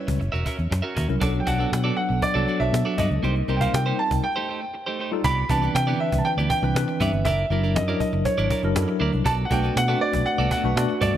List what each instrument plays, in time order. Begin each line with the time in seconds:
Already playing: tine electric piano G3 C#4 E4 B4, grand piano C#5
0.07 fingered electric bass C#2, muted clean electric guitar stroke, cajon bass
0.19 fingered electric bass F#1, muted clean electric guitar stroke, cajon slap
0.32 fingered electric bass E1, clean electric guitar C#4 F#4 A#4 E5, cajon slap
0.45 clean electric guitar C#4 F#4 A#4 E5, cajon bass
0.58 fingered electric bass E2, muted clean electric guitar stroke, cajon slap
0.70 fingered electric bass F#2, muted clean electric guitar stroke, cajon slap
0.82 clean electric guitar C#4 F#4 A#4 E5
0.95 fingered electric bass D#2, clean electric guitar C#4 F#4 A#4 E5, cajon bass
1.08 fingered electric bass C2, tine electric piano F#3 C#4 E4 A#4, muted clean electric guitar stroke, cajon slap
1.20 fingered electric bass B1, tine electric piano F#3 B3 D4 A4, clean electric guitar D4 F#4 A4 D5, cajon bass
1.34 muted clean electric guitar stroke, cajon slap
1.40 grand piano G5
1.46 fingered electric bass B1, clean electric guitar D4 F#4 A4 D5, grand piano F#5, cajon bass
1.58 tine electric piano F#3 B3 D4 A4, clean electric guitar D4 F#4 A4 D5
1.71 fingered electric bass B2, muted clean electric guitar stroke, cajon slap
1.84 tine electric piano F#3 B3 D4 A4, clean electric guitar D4 F#4 A4 D5
1.97 grand piano F#5, muted clean electric guitar stroke
2.09 fingered electric bass B1, muted clean electric guitar stroke, cajon slap
2.22 grand piano D5, muted clean electric guitar stroke, cajon bass
2.34 fingered electric bass C2, tine electric piano F#3 B3 D4 A4, clean electric guitar D4 F#4 A4 D5
2.47 clean electric guitar D4 F#4 A4 D5, cajon slap
2.60 fingered electric bass B1, tine electric piano F#3 B3 D4 A4, grand piano E5, muted clean electric guitar stroke, cajon slap
2.72 fingered electric bass B2, muted clean electric guitar stroke, cajon slap
2.85 clean electric guitar D4 F#4 A4 D5
2.98 fingered electric bass G2, clean electric guitar D4 F#4 A4 D5, grand piano D#5, cajon bass
3.10 fingered electric bass C#2, muted clean electric guitar stroke, cajon slap
3.23 fingered electric bass C2, tine electric piano G3 C4 D#4 A#4, clean electric guitar A#3 D#4 G4 C5, cajon slap
3.35 muted clean electric guitar stroke, cajon slap
3.48 fingered electric bass C2, tine electric piano G3 C4 D#4 A#4, clean electric guitar A#3 D#4 G4 C5, cajon slap
3.57 grand piano G5
3.61 clean electric guitar A#3 D#4 G4 C5, grand piano F5, cajon bass, cajon slap
3.73 fingered electric bass C3, tine electric piano G3 C4 D#4 A#4, grand piano G5, muted clean electric guitar stroke, cajon slap
3.86 clean electric guitar A#3 D#4 G4 C5
3.99 grand piano A5, muted clean electric guitar stroke
4.11 fingered electric bass C2, muted clean electric guitar stroke, cajon bass
4.23 grand piano G5, muted clean electric guitar stroke
4.36 clean electric guitar A3 D#4 G4 C5
4.49 clean electric guitar A3 D#4 G4 C5
4.61 muted clean electric guitar stroke
4.74 muted clean electric guitar stroke
4.86 clean electric guitar A3 D#4 G4 C5
4.99 clean electric guitar A3 D#4 G4 C5
5.11 tine electric piano G3 D#4 F4 A4, muted clean electric guitar stroke
5.24 fingered electric bass C2, clean electric guitar B3 E4 G4 D5, grand piano B5, cajon bass
5.37 cajon slap
5.49 fingered electric bass C2, tine electric piano E3 C4 D4 B4, clean electric guitar B3 E4 G4 D5, grand piano A5, cajon bass
5.62 clean electric guitar B3 E4 G4 D5, cajon slap
5.75 fingered electric bass C3, grand piano G5, muted clean electric guitar stroke, cajon slap
5.87 tine electric piano D3 C4 D4 B4, clean electric guitar B3 E4 G4 D5, cajon slap
5.93 tine electric piano E3
6.00 grand piano E5, muted clean electric guitar stroke
6.12 fingered electric bass C2, muted clean electric guitar stroke, cajon bass
6.18 grand piano A5
6.25 grand piano G5, muted clean electric guitar stroke, cajon slap
6.37 fingered electric bass D2, clean electric guitar B3 E4 G4 D5, cajon slap
6.50 grand piano G5, muted clean electric guitar stroke, cajon bass
6.62 fingered electric bass C2, tine electric piano E3 C4 D4 B4, muted clean electric guitar stroke, cajon slap
6.75 fingered electric bass C3, tine electric piano E3 C4 D4 B4, muted clean electric guitar stroke, cajon slap
6.88 muted clean electric guitar stroke, cajon slap
7.00 fingered electric bass G2, clean electric guitar B3 E4 G4 D5, grand piano E5, cajon bass
7.13 fingered electric bass G1, muted clean electric guitar stroke, cajon slap
7.25 fingered electric bass F#1, clean electric guitar D4 E4 A#4 D5, grand piano E5, cajon bass
7.50 fingered electric bass F#1, tine electric piano F#3 D4 E4 A#4, clean electric guitar D4 E4 A#4 D5, cajon slap
7.63 clean electric guitar D4 E4 A#4 D5, cajon slap
7.75 fingered electric bass F#2, grand piano D#5, cajon slap
7.88 tine electric piano F#3 D4 E4 A#4, clean electric guitar D4 E4 A#4 D5, cajon slap
8.00 grand piano D#5, muted clean electric guitar stroke, cajon bass
8.13 fingered electric bass F#1, muted clean electric guitar stroke, cajon slap
8.25 grand piano C#5, muted clean electric guitar stroke, cajon bass
8.38 fingered electric bass G#1, clean electric guitar D4 E4 A#4 D5, cajon slap
8.50 clean electric guitar D4 E4 A#4 D5, cajon bass
8.63 fingered electric bass F#1, tine electric piano F#3 D4 E4 A#4, muted clean electric guitar stroke, cajon slap
8.75 fingered electric bass F#2, tine electric piano F#3 D4 E4 A4, muted clean electric guitar stroke, cajon slap
8.83 tine electric piano A#4
8.88 muted clean electric guitar stroke, cajon slap
9.00 fingered electric bass D2, clean electric guitar D4 E4 A#4 D5
9.13 fingered electric bass C2, muted clean electric guitar stroke, cajon slap
9.24 fingered electric bass B1, clean electric guitar B3 F#4 A4 D5, grand piano A5, cajon bass
9.38 cajon slap
9.45 grand piano F#5
9.50 fingered electric bass B1, tine electric piano A3 D4 F#4 B4, clean electric guitar B3 F#4 A4 D5, grand piano G5, cajon bass
9.63 clean electric guitar B3 F#4 A4 D5, cajon slap
9.76 fingered electric bass B2, grand piano F#5, muted clean electric guitar stroke, cajon slap
9.88 tine electric piano A3 C4 F#4 B4, clean electric guitar B3 F#4 A4 D5, cajon slap
9.95 tine electric piano D4
10.00 grand piano D5, muted clean electric guitar stroke
10.13 fingered electric bass B1, muted clean electric guitar stroke, cajon bass
10.26 grand piano F#5, muted clean electric guitar stroke, cajon slap
10.38 fingered electric bass C2, clean electric guitar B3 F#4 A4 D5, cajon slap
10.51 clean electric guitar B3 F#4 A4 D5, grand piano F#5, cajon bass
10.64 fingered electric bass B1, tine electric piano A3 D4 F#4 B4, muted clean electric guitar stroke
10.76 fingered electric bass B2, tine electric piano A3 D4 F#4 D5, muted clean electric guitar stroke, cajon slap
10.89 muted clean electric guitar stroke, cajon slap
11.01 fingered electric bass G2, clean electric guitar B3 F#4 A4 D5, grand piano D5, cajon bass
11.14 fingered electric bass D#2, muted clean electric guitar stroke, cajon slap